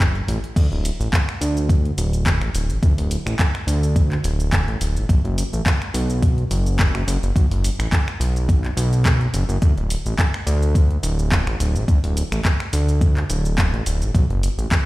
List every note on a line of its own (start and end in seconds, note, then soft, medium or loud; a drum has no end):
0.00 0.22 F#1 loud
0.00 kick loud
0.00 clap loud
0.00 closed hi-hat medium
0.15 closed hi-hat soft
0.28 0.39 A1 medium
0.28 open hi-hat loud
0.44 closed hi-hat medium
0.56 0.67 D2 medium
0.56 kick loud
0.56 closed hi-hat medium
0.56 crash loud
0.56 shaker soft
0.72 0.91 D1 loud
0.72 closed hi-hat soft
0.85 open hi-hat loud
0.85 shaker medium
1.00 1.09 A1 medium
1.00 closed hi-hat medium
1.00 shaker soft
1.13 kick loud
1.13 clap loud
1.13 closed hi-hat medium
1.13 shaker soft
1.29 finger snap medium
1.29 closed hi-hat soft
1.41 1.92 D2 medium
1.41 open hi-hat loud
1.41 shaker medium
1.57 closed hi-hat medium
1.57 shaker soft
1.69 kick loud
1.69 closed hi-hat medium
1.69 shaker soft
1.85 closed hi-hat soft
1.97 2.41 D1 loud
1.97 open hi-hat loud
1.97 shaker medium
2.13 closed hi-hat medium
2.13 shaker soft
2.26 kick loud
2.26 clap loud
2.26 closed hi-hat medium
2.26 shaker soft
2.42 2.51 A1 medium
2.42 finger snap medium
2.42 closed hi-hat soft
2.54 2.71 D1 loud
2.54 open hi-hat loud
2.54 shaker medium
2.70 2.79 A1 medium
2.70 closed hi-hat medium
2.70 shaker soft
2.83 2.94 D2 loud
2.83 kick loud
2.83 closed hi-hat medium
2.83 shaker soft
2.98 3.17 D1 loud
2.98 open hi-hat medium
3.11 open hi-hat loud
3.11 shaker medium
3.26 3.35 A1 medium
3.26 finger snap medium
3.26 closed hi-hat medium
3.26 shaker soft
3.39 kick loud
3.39 clap loud
3.39 closed hi-hat medium
3.39 shaker soft
3.55 finger snap medium
3.55 closed hi-hat soft
3.67 4.18 D2 medium
3.67 open hi-hat loud
3.67 shaker medium
3.83 closed hi-hat medium
3.83 shaker soft
3.96 kick loud
3.96 closed hi-hat medium
3.96 shaker soft
4.12 clap soft
4.12 closed hi-hat soft
4.24 4.67 D1 loud
4.24 open hi-hat loud
4.24 shaker medium
4.40 closed hi-hat medium
4.40 shaker soft
4.53 kick loud
4.53 clap loud
4.53 closed hi-hat medium
4.53 shaker soft
4.68 4.77 A1 medium
4.68 closed hi-hat soft
4.80 4.98 D1 loud
4.80 open hi-hat loud
4.80 shaker medium
4.96 5.05 A1 medium
4.96 closed hi-hat medium
4.96 shaker soft
5.09 5.20 B1 medium
5.09 kick loud
5.09 closed hi-hat medium
5.09 shaker soft
5.24 5.44 F#1 loud
5.24 closed hi-hat soft
5.38 open hi-hat loud
5.38 shaker medium
5.53 5.62 A1 medium
5.53 closed hi-hat medium
5.53 shaker soft
5.66 kick loud
5.66 clap loud
5.66 closed hi-hat medium
5.66 shaker soft
5.82 finger snap medium
5.82 closed hi-hat soft
5.94 6.45 B1 medium
5.94 open hi-hat loud
5.94 shaker medium
6.10 closed hi-hat medium
6.10 shaker soft
6.23 kick loud
6.23 closed hi-hat medium
6.23 shaker soft
6.38 closed hi-hat soft
6.51 6.94 F#1 loud
6.51 open hi-hat loud
6.51 shaker medium
6.66 closed hi-hat medium
6.66 shaker soft
6.79 kick loud
6.79 clap loud
6.79 closed hi-hat medium
6.79 shaker soft
6.94 7.03 F#1 medium
6.94 finger snap medium
6.94 closed hi-hat soft
7.07 7.18 F#1 loud
7.07 open hi-hat loud
7.07 shaker medium
7.23 7.32 F#1 medium
7.23 closed hi-hat medium
7.23 shaker soft
7.36 7.47 B1 medium
7.36 kick loud
7.36 closed hi-hat medium
7.36 shaker soft
7.51 7.70 F#1 loud
7.51 open hi-hat medium
7.64 open hi-hat loud
7.64 shaker medium
7.79 7.88 A1 medium
7.79 finger snap medium
7.79 closed hi-hat soft
7.79 shaker soft
7.92 kick loud
7.92 clap loud
7.92 closed hi-hat medium
7.92 shaker soft
8.08 finger snap medium
8.08 closed hi-hat soft
8.20 8.71 B1 loud
8.20 open hi-hat loud
8.20 shaker medium
8.36 closed hi-hat medium
8.36 shaker soft
8.49 kick loud
8.49 closed hi-hat medium
8.49 shaker soft
8.65 clap soft
8.65 closed hi-hat soft
8.77 9.27 B1 loud
8.77 open hi-hat loud
8.77 shaker medium
8.93 closed hi-hat medium
8.93 shaker soft
9.05 kick loud
9.05 clap loud
9.05 closed hi-hat medium
9.05 shaker soft
9.21 closed hi-hat soft
9.33 9.44 F#1 medium
9.33 open hi-hat loud
9.33 shaker medium
9.49 9.58 F#1 medium
9.49 closed hi-hat soft
9.49 shaker soft
9.62 9.73 D2 loud
9.62 kick loud
9.62 closed hi-hat medium
9.62 shaker soft
9.77 9.96 D1 loud
9.77 closed hi-hat soft
9.90 open hi-hat loud
9.90 shaker medium
10.06 10.15 A1 medium
10.06 closed hi-hat medium
10.06 shaker soft
10.19 kick loud
10.19 clap loud
10.19 closed hi-hat medium
10.19 shaker soft
10.34 finger snap medium
10.34 closed hi-hat soft
10.46 10.97 D2 loud
10.46 open hi-hat loud
10.46 shaker medium
10.63 closed hi-hat medium
10.63 shaker soft
10.75 kick loud
10.75 closed hi-hat medium
10.75 shaker soft
10.91 closed hi-hat soft
11.03 11.46 D1 loud
11.03 open hi-hat loud
11.03 shaker medium
11.19 closed hi-hat medium
11.19 shaker soft
11.32 kick loud
11.32 clap loud
11.32 closed hi-hat medium
11.32 shaker soft
11.47 11.56 A1 medium
11.47 finger snap medium
11.47 closed hi-hat soft
11.60 11.77 D1 loud
11.60 open hi-hat loud
11.60 shaker medium
11.75 11.85 A1 medium
11.75 closed hi-hat soft
11.75 shaker soft
11.88 11.99 D2 medium
11.88 kick loud
11.88 closed hi-hat medium
11.88 shaker soft
12.04 12.23 D1 loud
12.04 open hi-hat medium
12.17 open hi-hat loud
12.17 shaker medium
12.32 12.41 A1 medium
12.32 finger snap medium
12.32 closed hi-hat medium
12.32 shaker soft
12.45 kick loud
12.45 clap loud
12.45 closed hi-hat medium
12.45 shaker soft
12.60 finger snap medium
12.60 closed hi-hat soft
12.73 13.24 D2 loud
12.73 open hi-hat loud
12.73 shaker medium
12.89 closed hi-hat medium
12.89 shaker soft
13.01 kick loud
13.01 closed hi-hat medium
13.01 shaker soft
13.17 clap soft
13.17 closed hi-hat soft
13.29 13.73 D1 loud
13.29 open hi-hat loud
13.29 shaker medium
13.45 closed hi-hat medium
13.45 shaker soft
13.58 kick loud
13.58 clap loud
13.58 closed hi-hat medium
13.58 shaker soft
13.73 13.82 A1 medium
13.73 closed hi-hat soft
13.86 14.03 D1 loud
13.86 open hi-hat loud
13.86 shaker medium
14.02 14.11 A1 medium
14.02 closed hi-hat medium
14.02 shaker soft
14.15 14.26 B1 medium
14.15 kick loud
14.15 closed hi-hat medium
14.15 shaker soft
14.30 14.49 F#1 loud
14.30 closed hi-hat soft
14.43 open hi-hat loud
14.43 shaker medium
14.58 14.67 A1 medium
14.58 closed hi-hat medium
14.58 shaker soft
14.71 kick loud
14.71 clap loud
14.71 closed hi-hat medium
14.71 shaker soft